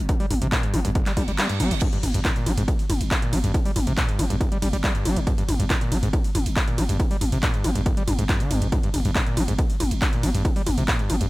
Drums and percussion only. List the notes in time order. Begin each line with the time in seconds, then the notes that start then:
0.09 kick, closed hi-hat, mid tom
0.20 open hi-hat
0.31 open hi-hat, mid tom
0.42 closed hi-hat
0.52 kick, clap, closed hi-hat, mid tom
0.63 closed hi-hat
0.74 open hi-hat, mid tom
0.85 closed hi-hat
0.95 kick, closed hi-hat, mid tom
1.06 clap, closed hi-hat
1.17 kick, open hi-hat, mid tom
1.28 closed hi-hat
1.38 clap, closed hi-hat, mid tom
1.49 closed hi-hat
1.60 open hi-hat, mid tom
1.71 closed hi-hat
1.82 kick, closed hi-hat, mid tom, crash, ride
1.93 closed hi-hat
2.03 open hi-hat, mid tom, ride
2.14 closed hi-hat
2.25 kick, clap, closed hi-hat, mid tom, ride
2.36 closed hi-hat
2.46 open hi-hat, mid tom, ride
2.58 closed hi-hat
2.68 kick, closed hi-hat, mid tom, ride
2.79 open hi-hat
2.90 open hi-hat, mid tom, ride
3.01 closed hi-hat
3.11 kick, clap, closed hi-hat, mid tom, ride
3.22 closed hi-hat
3.33 open hi-hat, mid tom, ride
3.44 closed hi-hat
3.54 kick, closed hi-hat, mid tom, ride
3.65 open hi-hat
3.76 open hi-hat, mid tom, ride
3.87 closed hi-hat
3.98 kick, clap, closed hi-hat, mid tom, ride
4.09 closed hi-hat
4.19 open hi-hat, mid tom, ride
4.30 closed hi-hat
4.41 kick, closed hi-hat, mid tom, ride
4.52 closed hi-hat
4.62 open hi-hat, mid tom, ride
4.73 closed hi-hat
4.84 kick, clap, closed hi-hat, mid tom, ride
4.95 closed hi-hat
5.05 open hi-hat, mid tom, ride
5.17 closed hi-hat
5.27 kick, closed hi-hat, mid tom, ride
5.38 closed hi-hat
5.49 open hi-hat, mid tom, ride
5.60 closed hi-hat
5.70 kick, clap, closed hi-hat, mid tom, ride
5.81 closed hi-hat
5.92 open hi-hat, mid tom, ride
6.03 closed hi-hat
6.13 kick, closed hi-hat, mid tom, ride
6.24 open hi-hat
6.35 open hi-hat, mid tom, ride
6.46 closed hi-hat
6.56 kick, clap, closed hi-hat, mid tom, ride
6.68 closed hi-hat
6.78 open hi-hat, mid tom, ride
6.89 closed hi-hat
7.00 kick, closed hi-hat, mid tom, ride
7.11 open hi-hat
7.21 open hi-hat, mid tom, ride
7.32 closed hi-hat
7.43 kick, clap, closed hi-hat, mid tom, ride
7.54 closed hi-hat
7.64 open hi-hat, mid tom, ride
7.75 closed hi-hat
7.86 kick, closed hi-hat, mid tom, ride
7.97 closed hi-hat
8.08 open hi-hat, mid tom, ride
8.19 closed hi-hat
8.29 kick, clap, closed hi-hat, mid tom, ride
8.40 closed hi-hat
8.51 open hi-hat, mid tom, ride
8.62 closed hi-hat
8.72 kick, closed hi-hat, mid tom, ride
8.83 closed hi-hat
8.94 open hi-hat, mid tom, ride
9.05 closed hi-hat
9.15 kick, clap, closed hi-hat, mid tom, ride
9.27 closed hi-hat
9.37 open hi-hat, mid tom, ride
9.48 closed hi-hat
9.59 kick, closed hi-hat, mid tom, ride
9.70 open hi-hat
9.80 open hi-hat, mid tom, ride
9.91 closed hi-hat
10.02 kick, clap, closed hi-hat, mid tom, ride
10.13 closed hi-hat
10.23 open hi-hat, mid tom, ride
10.34 closed hi-hat
10.45 kick, closed hi-hat, mid tom, ride
10.56 open hi-hat
10.67 open hi-hat, mid tom, ride
10.78 closed hi-hat
10.88 kick, clap, closed hi-hat, mid tom, ride
10.99 closed hi-hat
11.10 open hi-hat, mid tom, ride
11.21 closed hi-hat